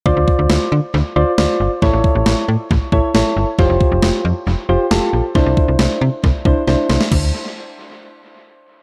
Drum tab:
CC |----------------|----------------|----------------|----------------|
SD |----o-------o---|----o-------o---|----o-------o---|----o-------o-oo|
BD |o-o-------------|o-o-----o-o-----|o-o-------------|o-o-----o-o-----|

CC |x---------------|
SD |----------------|
BD |o---------------|